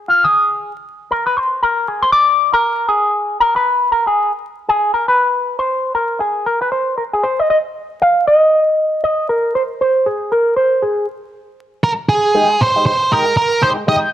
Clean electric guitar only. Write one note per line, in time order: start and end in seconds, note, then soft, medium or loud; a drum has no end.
0.00 0.11 G#4 loud
0.08 0.24 F4 medium
0.24 0.72 G#4 medium
1.11 1.26 A#4 medium
1.27 1.37 B4 medium
1.37 1.62 C5 loud
1.63 1.86 A#4 medium
1.88 2.04 G#4 medium
2.02 2.12 C5 medium
2.12 2.53 D5 loud
2.53 2.87 A#4 loud
2.88 3.37 G#4 medium
3.40 3.56 A#4 medium
3.56 3.92 B4 loud
3.92 4.06 A#4 medium
4.07 4.31 G#4 medium
4.68 4.93 G#4 medium
4.94 5.08 A#4 medium
5.08 5.59 B4 medium
5.59 5.94 C5 medium
5.95 6.19 A#4 medium
6.20 6.45 G#4 medium
6.46 6.61 A#4 medium
6.62 6.71 B4 medium
6.72 6.96 C5 loud
6.98 7.03 A#4 medium
7.13 7.23 G#4 medium
7.23 7.39 C5 loud
7.39 7.49 D#5 medium
7.50 7.57 D#5 loud
8.02 8.25 F5 loud
8.27 9.03 D#5 loud
9.04 9.29 D#5 medium
9.29 9.55 A#4 medium
9.55 9.62 C5 medium
9.81 10.07 C5 medium
10.06 10.32 G#4 medium
10.32 10.56 A#4 medium
10.57 10.82 C5 medium
10.82 11.06 G#4 medium
12.34 12.56 G#3 medium
12.34 12.50 D#4 medium
12.34 12.49 G4 medium
12.50 muted clean electric guitar stroke soft
12.61 muted clean electric guitar stroke soft
12.76 12.91 G#3 medium
12.76 12.91 D#4 medium
12.76 12.90 G4 medium
13.00 muted clean electric guitar stroke soft
13.11 13.32 G#3 medium
13.11 13.26 D#4 medium
13.11 13.25 G4 medium
13.26 muted clean electric guitar stroke soft
13.36 muted clean electric guitar stroke soft
13.51 muted clean electric guitar stroke soft
13.61 13.83 G#3 medium
13.61 13.77 D#4 loud
13.61 13.76 G4 loud
13.77 muted clean electric guitar stroke medium
13.87 14.08 G#3 medium
13.87 14.09 D#4 medium
13.87 14.09 G4 loud